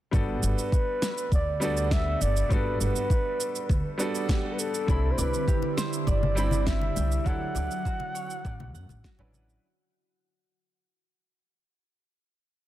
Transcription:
0.11 upright bass G1, grand piano G3 B3 D4 F#4 A4, kick, cabasa
0.43 upright bass G1, flugelhorn B4, cabasa
0.59 cabasa
0.72 kick, cabasa
1.02 snare, cabasa
1.18 cabasa
1.32 upright bass D2, flugelhorn D5, kick, cabasa
1.60 grand piano G3 B3 D4 F#4 A4, flugelhorn D5, cabasa
1.77 cabasa
1.91 flugelhorn E5, kick, snare, cabasa
2.21 upright bass G1, flugelhorn D5, cabasa
2.37 cabasa
2.49 upright bass G1, grand piano G3 B3 D4 F#4 A4, flugelhorn B4, kick, cabasa
2.80 upright bass G1, flugelhorn B4, cabasa
2.96 cabasa
3.10 kick, cabasa
3.41 cabasa
3.56 cabasa
3.69 upright bass D2, kick, cabasa
3.98 grand piano G3 B3 D4 F#4 A4, cabasa
4.15 cabasa
4.29 flugelhorn G4, kick, snare, cabasa
4.52 flugelhorn B4
4.59 flugelhorn A4, cabasa
4.74 cabasa
4.87 upright bass C2, analog synth pad D3 C4 E4, grand piano G3 C4 D4 E4 B5, harp E4, kick, cabasa
5.12 flugelhorn C5
5.18 upright bass C2, flugelhorn B4, harp D5, low conga, cabasa
5.34 cabasa
5.48 harp G4, kick, cabasa
5.62 muted conga
5.77 harp C5, snare, cabasa
5.93 cabasa
6.07 upright bass G1, harp D5, flugelhorn D5, kick, muted conga, cabasa
6.23 high conga
6.35 grand piano G3 C4 D4 E4 B5, harp G5, cabasa
6.51 high conga, cabasa
6.67 harp G4, flugelhorn E5, kick, snare, muted conga, cabasa
6.81 muted conga
6.96 upright bass C2, harp G5, low conga, cabasa
7.12 cabasa
7.24 upright bass D2, grand piano F#3 D4 E4 A4, analog synth pad F#3, harp E4, flugelhorn F#5, kick, cabasa
7.55 upright bass D2, harp D5, low conga, cabasa
7.71 cabasa
7.85 harp F#4, kick, cabasa
8.00 muted conga
8.15 harp C#5, cabasa
8.30 cabasa
8.45 upright bass A1, harp D5, kick, cabasa
8.60 muted conga, high conga
8.74 upright bass F#2, harp F#5, cabasa
8.89 upright bass A1, muted conga, high conga, cabasa
9.04 harp F#4, kick, snare, cabasa
9.19 upright bass A1, grand piano F#3 C#4 D4 E4 B4, muted conga, low conga
9.33 harp F#5, high conga, cabasa
9.49 cabasa

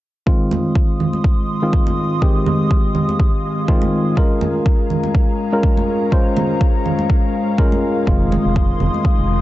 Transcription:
0.26 tine electric piano D#3 G#3 C4 F4, analog synth pad G#3 F5 C6 D#6, ambient pad F4, kick
0.49 ambient pad D#5, high conga, low conga
0.75 kick
1.00 low conga
1.13 high conga
1.22 ambient pad G#4, kick
1.62 tine electric piano D#3 G#3 C4 F4
1.73 kick
1.87 high conga
2.21 tine electric piano D#3 G#3 C4 G4, kick
2.46 high conga, low conga
2.71 kick
2.95 low conga
3.09 high conga
3.20 kick
3.68 tine electric piano D#3 G#3 C4 F4, kick
3.82 high conga
4.17 tine electric piano G#3 C#4 F4 A#4, analog synth pad G#3 A#5, ambient pad C#4, kick
4.41 high conga, low conga
4.66 kick
4.85 ambient pad A#4
4.90 low conga
5.03 high conga
5.15 kick
5.52 tine electric piano G#3 C#4 F4 A#4
5.63 kick
5.77 high conga
6.12 tine electric piano G#3 C#4 F4 C5, kick
6.36 high conga, low conga
6.61 kick
6.86 low conga
6.99 high conga
7.10 kick
7.58 tine electric piano G#3 C#4 F4 A#4, kick
7.72 high conga
8.07 fm bass F1, tine electric piano D#3 G#3 C4 F4, ambient pad D#4, analog synth pad C6 D#6, kick
8.17 ambient pad G#3
8.32 high conga, low conga
8.45 fm bass F1
8.56 kick
8.80 fm bass F1, low conga
8.94 high conga
9.05 kick
9.19 fm bass F1

